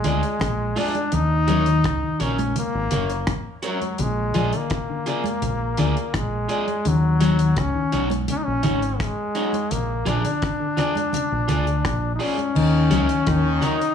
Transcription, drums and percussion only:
0.04 closed hi-hat, low conga
0.23 closed hi-hat
0.40 kick, cross-stick, closed hi-hat, high conga
0.76 open hi-hat, high conga
0.95 closed hi-hat, high conga
1.12 closed hi-hat, low conga
1.48 closed hi-hat, low conga
1.66 closed hi-hat
1.84 kick, cross-stick, closed hi-hat
2.20 closed hi-hat
2.38 closed hi-hat, high conga
2.56 closed hi-hat, high conga, low conga
2.91 closed hi-hat, low conga
3.10 closed hi-hat
3.27 kick, cross-stick, closed hi-hat
3.63 closed hi-hat
3.82 closed hi-hat, high conga
3.98 closed hi-hat, low conga
4.34 closed hi-hat, low conga
4.53 closed hi-hat
4.70 kick, cross-stick, closed hi-hat
5.06 closed hi-hat
5.24 closed hi-hat, high conga
5.42 closed hi-hat, high conga, low conga
5.77 closed hi-hat, low conga
5.97 closed hi-hat
6.14 kick, cross-stick, closed hi-hat
6.49 closed hi-hat
6.68 closed hi-hat, high conga
6.85 closed hi-hat, low conga
7.21 closed hi-hat, low conga
7.39 closed hi-hat
7.57 kick, cross-stick, closed hi-hat
7.92 closed hi-hat
8.10 closed hi-hat, high conga
8.28 closed hi-hat, high conga, low conga
8.63 closed hi-hat, low conga
8.82 closed hi-hat
9.00 kick, cross-stick, closed hi-hat
9.35 closed hi-hat
9.53 closed hi-hat, high conga
9.71 closed hi-hat, low conga
10.06 closed hi-hat, low conga
10.25 closed hi-hat
10.42 kick, cross-stick, closed hi-hat
10.77 cross-stick, closed hi-hat, low conga
10.95 closed hi-hat, high conga
11.13 closed hi-hat, high conga, low conga
11.49 closed hi-hat, low conga
11.67 closed hi-hat
11.85 kick, cross-stick, closed hi-hat
12.20 open hi-hat
12.38 closed hi-hat, high conga
12.55 crash, low conga
12.91 closed hi-hat, low conga
13.09 closed hi-hat
13.27 kick, cross-stick, closed hi-hat
13.62 closed hi-hat, low conga
13.81 closed hi-hat

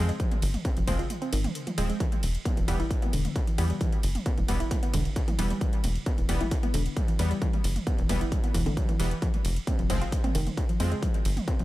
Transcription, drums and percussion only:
0.09 closed hi-hat
0.20 kick, closed hi-hat
0.31 closed hi-hat, mid tom
0.42 open hi-hat, ride
0.54 closed hi-hat, mid tom
0.65 kick, closed hi-hat
0.77 closed hi-hat
0.87 kick, mid tom, open hi-hat, ride
0.99 closed hi-hat
1.10 closed hi-hat, mid tom
1.22 closed hi-hat
1.33 open hi-hat, ride
1.44 closed hi-hat, mid tom
1.55 closed hi-hat
1.67 closed hi-hat, mid tom
1.78 open hi-hat, ride
1.90 closed hi-hat
2.00 kick, closed hi-hat
2.12 closed hi-hat, mid tom
2.23 open hi-hat, ride
2.35 closed hi-hat
2.45 kick, closed hi-hat, mid tom
2.57 closed hi-hat
2.68 kick, mid tom, open hi-hat, ride
2.80 closed hi-hat
2.91 kick, closed hi-hat
3.02 closed hi-hat, mid tom
3.13 open hi-hat, ride
3.25 closed hi-hat, mid tom
3.36 kick, closed hi-hat
3.47 closed hi-hat
3.58 mid tom, open hi-hat, ride
3.70 closed hi-hat
3.81 kick, closed hi-hat, mid tom
3.92 closed hi-hat
4.03 open hi-hat, ride
4.15 closed hi-hat, mid tom
4.26 kick, closed hi-hat
4.38 closed hi-hat, mid tom
4.48 kick, open hi-hat, ride
4.60 closed hi-hat
4.71 kick, closed hi-hat, mid tom
4.83 closed hi-hat
4.94 kick, mid tom, open hi-hat, ride
5.05 closed hi-hat
5.16 kick, closed hi-hat
5.28 closed hi-hat, mid tom
5.39 open hi-hat, ride
5.50 closed hi-hat, mid tom
5.61 kick, closed hi-hat
5.73 closed hi-hat
5.84 mid tom, open hi-hat, ride
5.95 closed hi-hat
6.06 kick, closed hi-hat, mid tom
6.18 closed hi-hat
6.29 kick, open hi-hat, ride
6.41 closed hi-hat, mid tom
6.51 kick, closed hi-hat
6.63 closed hi-hat, mid tom
6.74 open hi-hat, ride
6.86 closed hi-hat
6.97 kick, closed hi-hat, mid tom
7.08 closed hi-hat
7.19 mid tom, open hi-hat, ride
7.31 closed hi-hat
7.42 kick, closed hi-hat
7.53 closed hi-hat, mid tom
7.64 open hi-hat, ride
7.76 closed hi-hat, mid tom
7.87 kick, closed hi-hat
7.99 closed hi-hat
8.09 kick, mid tom, open hi-hat, ride
8.21 closed hi-hat
8.32 kick, closed hi-hat, mid tom
8.44 closed hi-hat
8.54 kick, open hi-hat, ride
8.66 closed hi-hat, mid tom
8.77 kick, closed hi-hat
8.89 closed hi-hat, mid tom
9.00 open hi-hat, ride
9.11 closed hi-hat
9.22 kick, closed hi-hat
9.34 closed hi-hat, mid tom
9.45 open hi-hat, ride
9.56 closed hi-hat
9.67 kick, closed hi-hat, mid tom
9.79 closed hi-hat
9.90 kick, mid tom, open hi-hat, ride
10.02 closed hi-hat
10.12 kick, closed hi-hat
10.24 closed hi-hat, mid tom
10.35 open hi-hat, ride
10.47 closed hi-hat, mid tom
10.57 kick, closed hi-hat
10.69 closed hi-hat
10.80 mid tom, open hi-hat, ride
10.92 closed hi-hat
11.03 kick, closed hi-hat, mid tom
11.14 closed hi-hat
11.25 open hi-hat, ride
11.37 closed hi-hat, mid tom
11.48 kick, closed hi-hat
11.59 closed hi-hat, mid tom

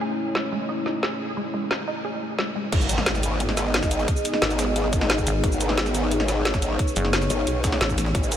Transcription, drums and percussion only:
0.35 snare
0.86 snare
1.03 snare
1.71 snare
2.39 snare
2.72 kick, closed hi-hat, crash
2.81 shaker
2.89 closed hi-hat, shaker
2.98 snare
3.06 snare, closed hi-hat
3.15 snare, shaker
3.23 closed hi-hat, shaker
3.40 closed hi-hat
3.49 snare
3.57 snare, closed hi-hat, shaker
3.74 snare, closed hi-hat
3.83 kick, snare, shaker
3.91 closed hi-hat, shaker
4.00 closed hi-hat
4.08 kick, closed hi-hat
4.17 shaker
4.25 closed hi-hat, shaker
4.33 snare
4.42 snare, closed hi-hat
4.50 snare, closed hi-hat, shaker
4.59 snare, closed hi-hat, shaker
4.76 closed hi-hat
4.93 kick, closed hi-hat, shaker
5.01 snare
5.10 snare, closed hi-hat
5.18 kick, shaker
5.27 closed hi-hat, shaker
5.44 kick, closed hi-hat
5.52 shaker
5.61 closed hi-hat, shaker
5.69 snare
5.78 snare, closed hi-hat
5.86 snare, shaker
5.95 snare, closed hi-hat, shaker
6.11 closed hi-hat
6.20 snare
6.28 snare, closed hi-hat, shaker
6.45 snare, closed hi-hat
6.54 kick, snare, shaker
6.62 closed hi-hat, shaker
6.79 kick, closed hi-hat
6.88 shaker
6.96 closed hi-hat, shaker
7.05 snare
7.13 snare, closed hi-hat
7.22 snare, closed hi-hat, shaker
7.30 closed hi-hat, shaker
7.47 closed hi-hat
7.64 kick, snare, closed hi-hat, shaker
7.72 snare
7.81 snare, closed hi-hat
7.89 kick, shaker
7.98 snare, closed hi-hat, shaker
8.06 snare
8.15 kick, closed hi-hat
8.23 shaker
8.32 closed hi-hat, shaker

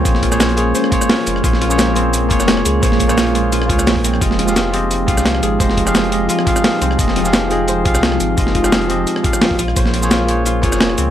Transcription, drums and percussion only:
0.05 kick, closed hi-hat, shaker
0.15 snare
0.23 kick, closed hi-hat
0.32 cross-stick, shaker
0.40 snare, closed hi-hat, shaker
0.49 closed hi-hat
0.57 closed hi-hat, shaker
0.75 closed hi-hat, shaker
0.84 cross-stick
0.92 kick, closed hi-hat, shaker
1.01 cross-stick, shaker
1.09 snare, closed hi-hat, open hi-hat
1.26 closed hi-hat, shaker
1.36 cross-stick
1.44 kick, closed hi-hat, shaker
1.53 snare
1.61 snare, closed hi-hat
1.70 snare, shaker
1.78 snare, closed hi-hat, shaker
1.95 closed hi-hat, shaker
2.13 closed hi-hat, shaker
2.30 kick, closed hi-hat, shaker
2.40 cross-stick, snare, shaker
2.48 snare, closed hi-hat
2.57 cross-stick
2.65 closed hi-hat, shaker
2.83 kick, closed hi-hat, shaker
2.92 snare
2.99 kick, closed hi-hat, shaker
3.09 cross-stick, shaker
3.17 snare, closed hi-hat, shaker
3.26 closed hi-hat
3.35 closed hi-hat, shaker
3.52 closed hi-hat, shaker
3.62 cross-stick
3.69 kick, closed hi-hat, shaker
3.79 cross-stick, shaker
3.86 snare, closed hi-hat, open hi-hat, shaker
3.96 kick
4.04 closed hi-hat, shaker
4.14 cross-stick
4.21 kick, closed hi-hat, shaker
4.31 snare
4.39 snare, closed hi-hat
4.48 snare, shaker
4.56 snare, closed hi-hat, shaker
4.74 closed hi-hat, shaker
4.91 closed hi-hat, shaker
5.08 kick, closed hi-hat, shaker
5.17 cross-stick, snare, shaker
5.25 snare, closed hi-hat
5.35 cross-stick
5.43 closed hi-hat, shaker
5.60 kick, closed hi-hat, shaker
5.69 snare
5.77 kick, closed hi-hat
5.87 cross-stick, shaker
5.95 snare, closed hi-hat, shaker
6.04 closed hi-hat
6.12 closed hi-hat, shaker
6.29 closed hi-hat, shaker
6.39 cross-stick
6.47 kick, closed hi-hat, shaker
6.56 cross-stick, shaker
6.64 snare, closed hi-hat, open hi-hat
6.82 closed hi-hat, shaker
6.91 cross-stick
6.99 kick, closed hi-hat, shaker
7.08 snare
7.16 snare, closed hi-hat
7.25 snare, shaker
7.33 snare, closed hi-hat, shaker
7.51 closed hi-hat, shaker
7.68 closed hi-hat, shaker
7.85 kick, closed hi-hat, shaker
7.95 cross-stick, snare, shaker
8.03 snare, closed hi-hat
8.12 cross-stick
8.20 closed hi-hat, shaker
8.38 kick, closed hi-hat, shaker
8.47 snare
8.55 kick, closed hi-hat
8.64 cross-stick, shaker
8.72 snare, closed hi-hat, shaker
8.81 closed hi-hat
8.90 closed hi-hat, shaker
9.07 closed hi-hat, shaker
9.16 cross-stick
9.24 kick, closed hi-hat, shaker
9.33 cross-stick, shaker
9.41 snare, closed hi-hat, open hi-hat
9.51 kick
9.59 closed hi-hat, shaker
9.68 cross-stick
9.76 kick, closed hi-hat, shaker
9.86 snare
9.94 snare, closed hi-hat
10.03 snare, shaker
10.11 snare, closed hi-hat, shaker
10.29 closed hi-hat, shaker
10.45 closed hi-hat, shaker
10.63 kick, closed hi-hat, shaker
10.72 cross-stick, snare, shaker
10.81 snare, closed hi-hat
10.90 cross-stick
10.98 closed hi-hat, shaker

